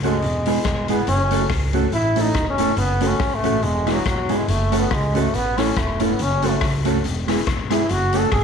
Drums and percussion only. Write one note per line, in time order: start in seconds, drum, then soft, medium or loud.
0.03 hi-hat pedal medium
0.03 open hi-hat medium
0.22 hi-hat pedal medium
0.22 open hi-hat medium
0.46 hi-hat pedal medium
0.46 open hi-hat medium
0.65 kick loud
0.65 cross-stick loud
0.65 hi-hat pedal medium
0.65 open hi-hat medium
0.88 hi-hat pedal medium
0.88 open hi-hat medium
1.07 hi-hat pedal medium
1.07 open hi-hat loud
1.31 hi-hat pedal medium
1.31 open hi-hat loud
1.50 kick loud
1.50 cross-stick loud
1.50 hi-hat pedal medium
1.50 open hi-hat medium
1.73 hi-hat pedal medium
1.73 open hi-hat loud
1.92 hi-hat pedal medium
1.92 open hi-hat medium
2.16 hi-hat pedal medium
2.16 open hi-hat medium
2.34 kick loud
2.34 cross-stick loud
2.34 hi-hat pedal medium
2.34 open hi-hat medium
2.58 hi-hat pedal medium
2.58 open hi-hat medium
2.58 open hi-hat loud
2.77 hi-hat pedal medium
2.77 open hi-hat medium
3.01 hi-hat pedal medium
3.01 open hi-hat medium
3.20 kick loud
3.20 cross-stick loud
3.20 hi-hat pedal medium
3.20 open hi-hat medium
3.44 hi-hat pedal medium
3.44 open hi-hat medium
3.63 hi-hat pedal medium
3.63 open hi-hat medium
3.87 cross-stick medium
3.87 hi-hat pedal medium
3.87 open hi-hat medium
4.06 kick loud
4.06 cross-stick loud
4.06 hi-hat pedal medium
4.06 open hi-hat medium
4.29 hi-hat pedal medium
4.29 open hi-hat loud
4.49 hi-hat pedal medium
4.49 open hi-hat medium
4.72 hi-hat pedal medium
4.72 open hi-hat loud
4.91 kick loud
4.91 cross-stick loud
4.91 hi-hat pedal medium
4.91 open hi-hat medium
5.15 hi-hat pedal medium
5.15 open hi-hat medium
5.34 hi-hat pedal medium
5.34 open hi-hat medium
5.58 cross-stick medium
5.58 hi-hat pedal medium
5.58 open hi-hat medium
5.76 kick loud
5.76 cross-stick loud
5.76 hi-hat pedal medium
5.76 open hi-hat medium
6.00 hi-hat pedal medium
6.00 open hi-hat loud
6.19 hi-hat pedal medium
6.19 open hi-hat medium
6.43 hi-hat pedal medium
6.43 open hi-hat loud
6.61 kick loud
6.61 cross-stick loud
6.61 hi-hat pedal medium
6.61 open hi-hat medium
6.85 hi-hat pedal medium
6.85 open hi-hat loud
7.04 hi-hat pedal medium
7.04 open hi-hat medium
7.28 cross-stick medium
7.28 hi-hat pedal medium
7.28 open hi-hat medium
7.47 kick loud
7.47 cross-stick loud
7.47 hi-hat pedal medium
7.47 open hi-hat medium
7.71 cross-stick medium
7.71 hi-hat pedal medium
7.71 open hi-hat loud
7.89 hi-hat pedal medium
7.89 open hi-hat medium
8.13 hi-hat pedal medium
8.13 open hi-hat loud
8.32 kick loud
8.32 cross-stick loud
8.32 hi-hat pedal medium
8.32 open hi-hat medium